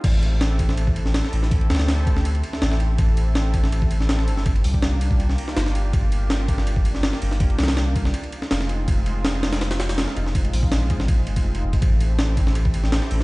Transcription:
<<
  \new Staff \with { instrumentName = "Analog synth pad" } { \time 4/4 \key a \phrygian \tempo 4 = 163 <c' e' g' a'>2~ <c' e' g' a'>8 <c' e' g' a'>4. | <c' e' g' a'>2~ <c' e' g' a'>8 <c' e' g' a'>4. | <c' e' g' a'>2~ <c' e' g' a'>8 <c' e' g' a'>4. | <bes d' f' g'>2~ <bes d' f' g'>8 <bes d' f' g'>8. <bes d' f' g'>8. |
<bes d' f' g'>2~ <bes d' f' g'>8 <bes d' f' g'>4. | <bes d' f' g'>2 r8 <aes c' ees' f'>4. | <aes c' ees' f'>2~ <aes c' ees' f'>8 <aes c' ees' f'>4. | <aes c' ees' f'>2~ <aes c' ees' f'>8 <aes c' ees' f'>4. |
<c' e' g' a'>2~ <c' e' g' a'>8 <c' e' g' a'>4. | }
  \new Staff \with { instrumentName = "Sub bass" } { \clef bass \time 4/4 \key a \phrygian a,,2. r8 a,,8~ | a,,8 d,2 r8 a,,4 | a,,2.~ a,,8 g,,8~ | g,,8 c,2 r8 g,,4 |
g,,2. r8 g,,8~ | g,,8 c,4. r4 f,,4 | f,,2. r8 f,,8~ | f,,8 bes,,2 f,,4 f,,8 |
a,,2. r8 a,,8 | }
  \new DrumStaff \with { instrumentName = "Drums" } \drummode { \time 4/4 <cymc bd cymr>8 cymr8 <cymr sn>8 <bd cymr>16 sn16 cymr16 bd16 cymr16 sn16 <cymr sn>16 sn16 cymr16 sn16 | <bd cymr>16 cymr16 <cymr sn>32 <cymr sn>32 <cymr sn>16 <cymr sn>8 <bd cymr>16 sn16 cymr16 cymr16 cymr16 sn16 <cymr sn>16 sn16 cymr8 | <bd cymr>8 cymr8 <cymr sn>8 <bd cymr>16 sn16 cymr16 bd16 cymr16 sn16 <cymr sn>16 sn16 cymr16 sn16 | <bd cymr>16 cymr16 hho16 bd16 <cymr sn>8 cymr16 bd16 cymr16 sn16 cymr16 sn16 <cymr sn>16 sn16 cymr8 |
<bd cymr>8 cymr8 <cymr sn>8 <bd cymr>16 sn16 cymr16 bd16 cymr16 sn16 <cymr sn>16 sn16 cymr16 sn16 | <bd cymr>16 cymr16 <cymr sn>32 <cymr sn>32 <cymr sn>16 <cymr sn>8 <bd cymr>16 sn16 cymr16 cymr16 cymr16 sn16 <cymr sn>16 sn16 cymr8 | <bd cymr>8 cymr8 <cymr sn>8 <cymr sn>16 <cymr sn>16 <cymr sn>16 <cymr sn>16 <cymr sn>16 <cymr sn>16 <cymr sn>16 sn16 cymr16 sn16 | <bd cymr>16 cymr16 hho16 bd16 <cymr sn>8 <bd cymr>16 sn16 <bd cymr>8 cymr16 <bd cymr>16 r16 cymr8 <bd cymr>16 |
<bd cymr>8 cymr8 <cymr sn>8 <bd cymr>16 sn16 cymr16 bd16 cymr16 sn16 <cymr sn>16 sn16 cymr16 sn16 | }
>>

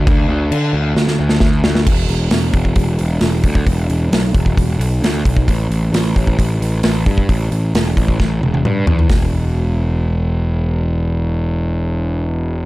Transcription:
<<
  \new Staff \with { instrumentName = "Picked electric bass" } { \clef bass \time 4/4 \key e \minor \tempo 4 = 133 d,8 d,8 d8 d,8 d,8 d,8 d,8 d,8 | e,,8 e,,8 e,,8 e,,8 e,,8 e,,8 e,,8 d,8 | e,,8 e,,8 b,,8 e,,8 e,,8 b,,8 d,8 b,,8 | a,,8 a,,8 a,,8 a,,8 a,,8 a,,8 a,,8 g,8 |
a,,8 a,,8 e,,8 a,,8 a,,8 e,,8 g,8 e,8 | e,,1~ | e,,1 | }
  \new DrumStaff \with { instrumentName = "Drums" } \drummode { \time 4/4 <cymc bd>4 cymc4 sn16 sn8 sn16 <bd sn>8 sn16 sn16 | <cymc bd>8 hho8 <hho sn>8 <hho bd>16 bd16 <hho bd>8 hho8 <hho sn>8 <hho bd>16 bd16 | <hho bd>8 hho8 <hho sn>8 <hho bd>16 bd16 <hho bd>8 hho8 <hho sn>8 <hho bd>16 bd16 | <hho bd>8 hho8 <hho sn>8 <hho bd>16 bd16 <hho bd>8 hho8 <hho sn>8 <hho bd>16 bd16 |
<hho bd>8 hho8 <hho sn>8 <hho bd>16 bd16 <bd sn>8 tommh16 tommh16 toml8 tomfh16 tomfh16 | <hho bd sn>4 r4 r4 r4 | r4 r4 r4 r4 | }
>>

